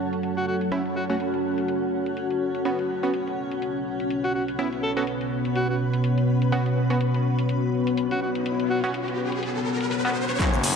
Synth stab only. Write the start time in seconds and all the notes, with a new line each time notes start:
0.72 A3 C#4 E4
1.10 A3 C#4 F#4
2.65 B3 C#4 F#4
3.03 B3 C#4 F#4
4.59 B3 C#4 E4
4.97 B3 C#4 F#4
6.52 B3 C#4 F#4
6.90 B3 C#4 F#4
8.84 B3 C#4 F#4
10.05 B3 C#4 F#4
10.39 A3 C#4 F#4